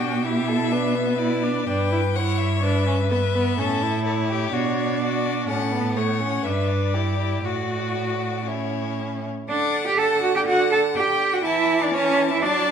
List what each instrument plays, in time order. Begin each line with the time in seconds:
Already playing: cello B2, viola D4, violin G5
0.00 violin F#4
0.24 viola E4, violin G4 E5
0.48 violin A4
0.72 viola D4, violin B4
0.95 viola B3
1.19 viola E4, violin D5
1.43 viola D4
1.67 cello G2, viola D4, violin B4 G5
1.92 viola E4
2.15 viola E4, violin C#5 F#5
2.39 violin E5
2.63 viola D4, violin B4
2.87 viola C#4
3.11 viola B3, violin E5
3.35 viola B3
3.58 cello A2, viola C#4, violin A4
3.82 viola E4
4.05 violin A4 C#5
4.29 violin G4
4.52 cello B2, viola D4, violin F#4
5.00 violin F#4 D5
5.48 cello A2, viola C#4, violin A4 F#5
5.71 viola B3
5.96 viola A3, violin C#5 F#5
6.20 viola C#4
6.44 cello G2, viola D4, violin B4 E5
6.68 violin D5
6.94 viola E4, violin G4
7.19 viola E4
7.44 cello A2, viola F#4, violin F#4 D5
8.47 viola C#4, violin E4 C#5
9.49 viola D3, cello D4, violin D5 F#5
9.87 cello G4, violin G5
9.98 cello A4, violin F#5 A5
10.22 cello F#4, violin F#5
10.36 cello G4, violin G5
10.47 cello F#4, violin F#5
10.71 cello A4, violin A5
10.96 cello G4, violin G5
11.34 cello F#4, violin F#5
11.45 viola E3, cello E4, violin E5 A5
11.82 cello D4, violin D5
11.93 cello C#4, violin C#5 A5
12.31 cello E4, violin E5
12.43 viola F#3, cello D4, violin D5 A5